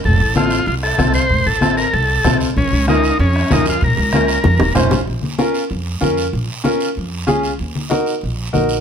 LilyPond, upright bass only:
\new Staff \with { instrumentName = "Upright bass" } { \clef bass \time 4/4 \key bes \minor \tempo 4 = 191 f,,8 a,,4. c,4 c,4 | f,,8 a,,4. c,4 c,4 | bes,,8 des,4. f,4 f,4 | bes,,8 des,4. f,8 ees,,8 f,,8 a,,8 |
bes,,8 r4. f,4 f,4 | bes,,8 r4. f,4 des,4 | ees,8 r4. bes,,4 bes,,4 | }